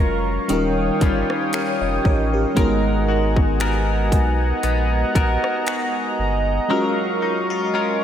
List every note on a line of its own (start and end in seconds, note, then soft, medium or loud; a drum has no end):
0.00 0.39 F1 medium
0.00 0.61 F#3 medium
0.00 0.45 G#3 medium
0.00 0.45 C#4 medium
0.00 0.61 C#4 medium
0.00 0.46 F4 medium
0.00 0.61 F4 medium
0.00 0.47 F#4 medium
0.00 0.48 A#4 medium
0.00 0.50 A#4 medium
0.00 2.57 A#4 medium
0.00 0.52 B4 medium
0.00 0.51 D#5 medium
0.00 2.53 F5 medium
0.00 0.48 A#5 medium
0.00 0.48 C#6 medium
0.48 0.91 D#1 loud
0.48 4.00 D#3 medium
0.48 2.52 G3 medium
0.48 2.52 C#4 medium
0.48 2.53 D#4 medium
0.48 2.53 F4 medium
0.48 2.55 C#5 medium
0.48 2.55 G5 medium
0.48 2.55 D#6 medium
0.48 closed hi-hat medium
0.53 1.53 A#4 medium
1.01 1.24 G1 medium
1.01 2.56 G3 medium
1.01 1.52 C#4 medium
1.01 2.68 F4 medium
1.01 kick medium
1.01 closed hi-hat medium
1.30 cross-stick medium
1.53 2.68 C#4 medium
1.53 1.80 G4 medium
1.53 1.80 A#4 medium
1.53 finger snap loud
1.53 closed hi-hat medium
1.81 2.00 F1 medium
1.81 2.04 D#5 medium
2.05 2.46 A1 medium
2.05 2.32 A#4 medium
2.05 2.32 C#5 medium
2.05 kick medium
2.33 2.83 G4 medium
2.33 2.58 A#4 medium
2.55 4.14 G#1 loud
2.55 6.65 G#3 medium
2.55 6.70 G#3 medium
2.55 6.66 B3 medium
2.55 6.67 D#4 medium
2.55 6.67 F#4 medium
2.55 3.61 A#4 medium
2.55 8.04 D#5 medium
2.55 6.66 F#5 medium
2.55 6.67 G#5 medium
2.55 8.04 A#5 medium
2.55 kick loud
2.55 closed hi-hat medium
2.59 6.68 A#4 medium
3.08 3.60 F#4 medium
3.36 kick medium
3.60 4.62 B3 medium
3.60 5.15 F#4 medium
3.60 5.16 A#4 medium
3.60 finger snap loud
3.60 closed hi-hat medium
4.12 4.53 B1 medium
4.12 kick medium
4.12 closed hi-hat medium
4.63 5.04 A#1 medium
4.63 5.14 B3 medium
4.63 closed hi-hat medium
5.15 5.37 A#1 medium
5.15 6.82 B3 medium
5.15 5.67 F#4 medium
5.15 6.70 A#4 medium
5.15 kick loud
5.15 closed hi-hat medium
5.44 cross-stick medium
5.67 6.82 F#4 medium
5.67 finger snap loud
5.67 closed hi-hat medium
6.19 6.60 G1 medium
6.69 8.04 F#3 medium
6.69 8.04 G#3 medium
6.69 8.04 C#4 medium
6.69 8.04 F4 medium
6.69 8.04 F#4 medium
6.69 7.75 A#4 medium
6.69 8.04 F5 medium
6.69 8.04 C#6 medium
6.73 8.04 A#4 medium
7.22 7.50 D#4 medium
7.50 7.73 F4 medium
7.74 8.04 C#4 medium
7.74 8.04 F4 medium
7.74 8.04 A#4 medium